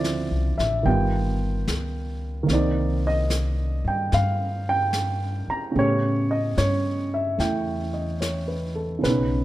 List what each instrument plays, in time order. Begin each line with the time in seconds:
Already playing: upright bass D2, grand piano D3 F3 C4 E4 C5 D5
0.04 snare, hi-hat pedal
0.31 upright bass C2
0.58 upright bass A1, grand piano E5, snare
0.83 upright bass G1, grand piano D#3 G3 B3 G5, brush sweep
0.88 grand piano F4
1.68 upright bass C#2, snare, hi-hat pedal
2.43 grand piano D#3 A#3
2.48 upright bass C2, grand piano C4, brush sweep, snare
2.53 grand piano D#4 D5
3.07 grand piano D#5
3.30 snare, hi-hat pedal
3.84 upright bass G2, grand piano G5
4.12 upright bass G2, grand piano F5, brush sweep, snare
4.69 grand piano G5
4.93 snare, hi-hat pedal
5.48 grand piano A#5, muted upright bass stroke
5.72 upright bass A2, grand piano C#3 A3 B3, brush sweep
5.77 grand piano G4 C#5
6.31 grand piano D#5
6.58 upright bass G2, grand piano C#5, snare, hi-hat pedal
7.14 grand piano E5
7.38 upright bass E2, grand piano A3 E4 G5, brush sweep, snare
7.94 grand piano D#5
8.21 grand piano C#5, snare, hi-hat pedal
8.48 grand piano B4
8.75 grand piano A4
8.99 grand piano C#3 C#4
9.03 upright bass B1, grand piano B3 B4, brush sweep, snare
9.10 grand piano D#4